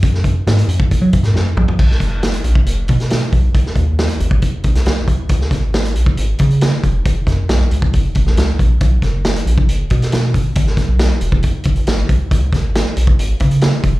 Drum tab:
CC |----------------|x---------------|----------------|----------------|
HH |x-x-xxx-x-xx----|--x-xxx-x-xxx-x-|x-x-xxx-x-xxx-x-|x-x-xxx-x-xxx-x-|
SD |-o--o------oo---|-oo-o------oo---|-o--o------oo---|-oo-o-------o---|
T2 |--------------o-|----------------|----------------|----------------|
FT |---------------o|----------------|----------------|----------------|
BD |o-o----oo-o-----|o-o----o--o---o-|o-o----oo-o---o-|o-o----o--o---o-|

CC |----------------|----------------|----------------|----------------|
HH |x-x-x-x-x-x-x-x-|x-x-xxx-x-xxx-x-|x-x-x-x-x-xxx-x-|x-x-x-x-x-xxx-x-|
SD |--o-o------oo---|--o-o------oo---|-oo-o-------o---|--o-o-------o---|
T2 |----------------|----------------|----------------|----------------|
FT |----------------|----------------|----------------|----------------|
BD |o-o----oo-o---o-|o-o----o--o---o-|o-o----oo-o---o-|o-o----o--o---o-|